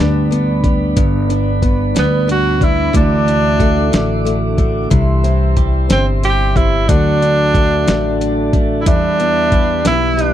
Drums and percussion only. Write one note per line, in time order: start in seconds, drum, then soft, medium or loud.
0.32 closed hi-hat medium
0.64 kick medium
0.64 closed hi-hat soft
0.97 kick loud
0.97 closed hi-hat medium
1.30 closed hi-hat soft
1.62 kick medium
1.62 closed hi-hat soft
1.96 snare loud
1.96 closed hi-hat medium
2.29 closed hi-hat medium
2.61 kick medium
2.61 closed hi-hat soft
2.94 kick loud
2.94 closed hi-hat medium
3.28 closed hi-hat soft
3.60 kick medium
3.60 closed hi-hat soft
3.93 snare loud
3.93 closed hi-hat medium
4.27 closed hi-hat medium
4.58 kick medium
4.58 closed hi-hat soft
4.91 kick loud
4.91 closed hi-hat medium
5.24 closed hi-hat soft
5.57 kick medium
5.57 closed hi-hat soft
5.90 snare loud
5.90 closed hi-hat medium
6.24 closed hi-hat medium
6.56 kick medium
6.56 closed hi-hat soft
6.89 kick loud
6.89 closed hi-hat medium
7.22 closed hi-hat soft
7.54 kick medium
7.54 closed hi-hat soft
7.88 snare loud
7.88 closed hi-hat medium
8.21 closed hi-hat medium
8.53 kick medium
8.53 closed hi-hat soft
8.86 kick loud
8.86 closed hi-hat medium
9.20 closed hi-hat soft
9.52 kick medium
9.52 closed hi-hat soft
9.85 snare loud
9.85 closed hi-hat medium
10.19 closed hi-hat medium